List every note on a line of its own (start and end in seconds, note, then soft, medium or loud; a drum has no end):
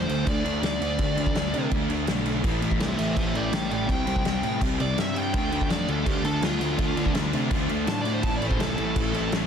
0.00 0.26 C5 medium
0.07 0.26 D2 medium
0.07 0.24 D3 medium
0.07 0.26 A3 medium
0.07 0.25 D4 medium
0.07 crash medium
0.26 0.44 D2 medium
0.26 0.43 D3 medium
0.26 0.44 A3 medium
0.26 0.44 D4 medium
0.26 0.62 D5 medium
0.26 kick loud
0.26 crash medium
0.44 0.62 D2 medium
0.44 0.60 D3 medium
0.44 0.61 A3 loud
0.44 0.61 D4 loud
0.44 crash medium
0.61 0.80 D2 medium
0.61 0.78 D3 medium
0.61 0.80 A3 medium
0.61 0.80 D4 medium
0.61 1.69 D5 medium
0.61 snare loud
0.61 crash medium
0.79 0.99 D2 medium
0.79 0.98 D3 medium
0.79 0.99 A3 medium
0.79 0.99 D4 loud
0.79 crash medium
0.98 1.34 D2 medium
0.98 1.15 D3 medium
0.98 1.17 A3 loud
0.98 1.16 D4 loud
0.98 kick loud
0.98 crash medium
1.16 1.34 D3 medium
1.16 1.36 A3 medium
1.16 1.36 D4 medium
1.16 crash medium
1.26 kick medium
1.35 1.53 D2 medium
1.35 1.52 D3 loud
1.35 1.53 A3 loud
1.35 1.53 D4 loud
1.35 snare loud
1.35 crash medium
1.53 1.71 C3 medium
1.53 1.70 D3 medium
1.53 1.71 A3 medium
1.53 1.72 D4 loud
1.53 crash medium
1.71 1.89 D2 medium
1.71 1.88 D3 medium
1.71 1.89 A3 medium
1.71 1.89 D4 medium
1.71 kick loud
1.71 crash medium
1.89 2.07 D2 medium
1.89 2.07 D3 medium
1.89 2.07 A3 loud
1.89 2.08 D4 loud
1.89 crash medium
2.07 2.43 B1 medium
2.07 2.24 D3 medium
2.07 2.25 A3 medium
2.07 2.25 D4 medium
2.07 snare loud
2.07 crash medium
2.26 2.43 D3 medium
2.26 2.43 A3 medium
2.26 2.43 D4 medium
2.26 crash medium
2.44 2.79 A1 medium
2.44 2.60 A2 medium
2.44 2.62 E3 loud
2.44 2.61 A3 loud
2.44 kick loud
2.44 crash medium
2.61 2.78 A2 medium
2.61 2.79 E3 medium
2.61 2.79 A3 medium
2.61 crash medium
2.71 kick medium
2.79 2.98 C2 medium
2.79 2.96 A2 loud
2.79 2.98 E3 loud
2.79 2.98 A3 loud
2.79 2.97 C5 medium
2.79 2.97 E5 medium
2.79 snare loud
2.79 crash medium
2.97 3.16 A1 medium
2.97 3.14 A2 medium
2.97 3.15 E3 loud
2.97 3.15 A3 loud
2.97 3.15 C5 medium
2.97 3.16 E5 medium
2.97 crash medium
3.15 3.34 A1 medium
3.15 3.32 A2 medium
3.15 3.33 E3 medium
3.15 3.33 A3 loud
3.15 3.36 C5 medium
3.15 3.37 E5 medium
3.15 kick loud
3.15 crash medium
3.33 3.53 A1 medium
3.33 3.50 A2 loud
3.33 3.51 E3 medium
3.33 3.52 A3 loud
3.33 3.52 D5 medium
3.33 3.53 G5 medium
3.33 crash medium
3.51 3.70 A1 medium
3.51 3.69 A2 medium
3.51 3.69 E3 medium
3.51 3.70 A3 medium
3.51 3.70 D5 medium
3.51 3.71 G5 medium
3.51 snare loud
3.51 crash medium
3.70 3.89 A1 medium
3.70 3.86 A2 medium
3.70 3.87 E3 loud
3.70 3.88 A3 medium
3.70 3.89 D5 medium
3.70 crash medium
3.74 3.90 G5 medium
3.87 4.24 C2 medium
3.87 4.05 C3 medium
3.87 4.06 G3 loud
3.87 4.06 C4 loud
3.87 kick loud
3.87 crash medium
3.91 4.60 G5 loud
4.06 4.24 C3 medium
4.06 4.24 G3 medium
4.06 4.25 C4 medium
4.06 crash medium
4.16 kick medium
4.25 4.43 C2 medium
4.25 4.41 C3 medium
4.25 4.42 G3 loud
4.25 4.43 C4 loud
4.25 snare loud
4.25 crash medium
4.42 4.61 A2 medium
4.42 4.59 C3 medium
4.42 4.60 G3 medium
4.42 4.60 C4 medium
4.42 crash medium
4.61 4.79 C2 medium
4.61 4.77 C3 medium
4.61 4.78 G3 medium
4.61 4.78 C4 medium
4.61 kick loud
4.61 crash medium
4.78 4.97 C2 medium
4.78 4.95 C3 medium
4.78 4.96 G3 loud
4.78 4.96 C4 loud
4.78 4.99 D5 loud
4.78 crash medium
4.96 5.33 G2 medium
4.96 5.13 C3 medium
4.96 5.13 G3 medium
4.96 5.14 C4 medium
4.96 5.18 E5 medium
4.96 snare loud
4.96 crash medium
5.14 5.32 C3 medium
5.14 5.32 G3 medium
5.14 5.33 C4 medium
5.14 5.70 G5 medium
5.14 crash medium
5.33 5.69 D2 medium
5.33 5.51 D3 medium
5.33 5.51 A3 loud
5.33 5.52 D4 loud
5.33 6.22 F4 medium
5.33 kick loud
5.33 crash medium
5.51 5.69 D3 medium
5.51 5.69 A3 loud
5.51 5.70 D4 medium
5.51 crash medium
5.61 kick medium
5.69 5.87 F2 medium
5.69 5.87 D3 medium
5.69 5.88 A3 loud
5.69 5.88 D4 loud
5.69 5.88 D5 medium
5.69 snare loud
5.69 crash medium
5.87 6.06 D2 medium
5.87 6.04 D3 medium
5.87 6.05 A3 medium
5.87 6.05 D4 medium
5.87 6.08 A4 medium
5.87 crash medium
6.05 6.23 D2 medium
6.05 6.23 D3 medium
6.05 6.24 A3 medium
6.05 6.24 D4 medium
6.05 6.25 G4 medium
6.05 kick loud
6.05 crash medium
6.24 6.42 D2 medium
6.24 6.41 D3 loud
6.24 6.43 A3 loud
6.24 6.43 D4 loud
6.24 6.41 F4 medium
6.24 6.42 A4 medium
6.24 crash medium
6.42 6.60 D2 medium
6.42 6.59 D3 medium
6.42 6.61 A3 medium
6.42 6.60 D4 loud
6.42 7.13 F4 loud
6.42 6.79 F4 medium
6.42 snare loud
6.42 crash medium
6.60 6.78 D2 medium
6.60 6.77 D3 medium
6.60 6.78 A3 medium
6.60 6.77 D4 medium
6.60 crash medium
6.78 7.14 D2 medium
6.78 6.94 D3 medium
6.78 6.96 A3 loud
6.78 6.96 D4 loud
6.78 7.67 F4 loud
6.78 kick loud
6.78 crash medium
6.96 7.12 D3 medium
6.96 7.14 A3 loud
6.96 7.13 D4 loud
6.96 crash medium
7.06 kick medium
7.13 7.33 D2 medium
7.13 7.32 D3 medium
7.13 7.33 A3 loud
7.13 7.33 D4 loud
7.13 snare loud
7.13 crash medium
7.33 7.50 C3 medium
7.33 7.49 D3 medium
7.33 7.50 A3 medium
7.33 7.51 D4 medium
7.33 crash medium
7.51 7.69 D2 medium
7.51 7.68 D3 medium
7.51 7.69 A3 medium
7.51 7.69 D4 loud
7.51 kick loud
7.51 crash medium
7.68 7.87 D2 medium
7.68 7.85 D3 loud
7.68 7.86 A3 loud
7.68 7.87 D4 loud
7.68 7.86 F4 medium
7.68 crash medium
7.87 8.23 A2 medium
7.87 8.03 D3 medium
7.87 8.04 A3 medium
7.87 8.05 D4 medium
7.87 8.23 F4 medium
7.87 8.00 A5 loud
7.87 snare loud
7.87 crash medium
8.01 8.22 D3 medium
8.01 8.23 A3 medium
8.01 8.13 D5 loud
8.01 crash medium
8.06 8.23 D4 loud
8.13 8.24 C5 medium
8.23 8.59 A1 medium
8.23 8.39 A2 medium
8.23 8.40 E3 medium
8.23 8.40 A3 loud
8.23 9.13 C4 loud
8.23 9.13 E4 loud
8.23 8.35 A5 medium
8.23 kick loud
8.23 crash medium
8.36 8.57 A2 medium
8.36 8.47 D5 medium
8.41 8.59 E3 medium
8.41 8.58 A3 medium
8.41 crash medium
8.47 8.59 C5 medium
8.47 kick medium
8.58 8.78 C2 medium
8.58 8.75 A2 loud
8.58 8.77 E3 loud
8.58 8.77 A3 loud
8.58 9.31 A4 loud
8.58 snare loud
8.58 crash medium
8.76 8.96 A1 loud
8.76 8.94 A2 medium
8.76 8.95 E3 medium
8.76 8.96 A3 loud
8.76 crash medium
8.95 9.14 A1 medium
8.95 9.11 A2 medium
8.95 9.12 E3 medium
8.95 9.12 A3 medium
8.95 kick loud
8.95 crash medium
9.12 9.32 A1 medium
9.12 9.30 A2 loud
9.12 9.30 E3 loud
9.12 9.31 A3 loud
9.12 9.32 C4 medium
9.12 9.31 E4 medium
9.12 crash medium
9.17 9.32 A2 medium
9.31 9.47 A1 medium
9.31 9.47 A2 medium
9.31 9.47 E3 medium
9.31 9.47 A3 medium
9.31 9.47 C4 medium
9.31 9.47 E4 medium
9.31 snare loud
9.31 crash medium